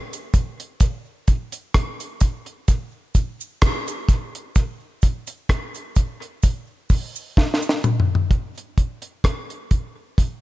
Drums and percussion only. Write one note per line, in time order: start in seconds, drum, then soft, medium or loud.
0.13 closed hi-hat soft
0.13 cabasa medium
0.34 kick loud
0.34 closed hi-hat medium
0.34 cabasa medium
0.60 closed hi-hat medium
0.80 kick loud
0.80 closed hi-hat medium
0.80 cabasa medium
1.28 kick loud
1.28 closed hi-hat medium
1.28 cabasa soft
1.52 closed hi-hat medium
1.52 cabasa medium
1.74 kick loud
1.74 cross-stick loud
1.74 closed hi-hat medium
2.00 closed hi-hat medium
2.00 cabasa soft
2.20 kick medium
2.20 closed hi-hat medium
2.20 cabasa medium
2.46 closed hi-hat soft
2.68 kick loud
2.68 closed hi-hat medium
2.68 cabasa medium
3.15 kick medium
3.15 closed hi-hat medium
3.15 cabasa medium
3.41 cabasa medium
3.62 kick loud
3.62 cross-stick loud
3.62 closed hi-hat medium
3.88 closed hi-hat medium
3.88 cabasa medium
4.09 kick loud
4.09 closed hi-hat medium
4.09 cabasa soft
4.35 closed hi-hat medium
4.55 kick loud
4.55 closed hi-hat medium
4.55 cabasa medium
5.02 kick medium
5.02 closed hi-hat medium
5.02 cabasa soft
5.27 closed hi-hat medium
5.27 cabasa medium
5.49 kick loud
5.49 cross-stick loud
5.49 closed hi-hat medium
5.74 closed hi-hat soft
5.74 cabasa soft
5.96 kick medium
5.96 closed hi-hat medium
5.96 cabasa medium
6.22 closed hi-hat soft
6.43 kick loud
6.43 closed hi-hat medium
6.43 cabasa medium
6.90 kick loud
6.90 open hi-hat medium
6.90 cabasa medium
7.16 cabasa medium
7.37 kick loud
7.37 snare medium
7.54 snare medium
7.62 cabasa medium
7.69 snare medium
7.84 mid tom medium
7.84 cabasa soft
8.00 floor tom medium
8.15 floor tom medium
8.31 kick medium
8.31 closed hi-hat medium
8.58 closed hi-hat soft
8.78 kick medium
8.78 closed hi-hat medium
9.02 closed hi-hat medium
9.24 kick loud
9.24 cross-stick loud
9.24 closed hi-hat medium
9.50 closed hi-hat soft
9.71 kick medium
9.71 closed hi-hat medium
10.18 kick loud
10.18 closed hi-hat medium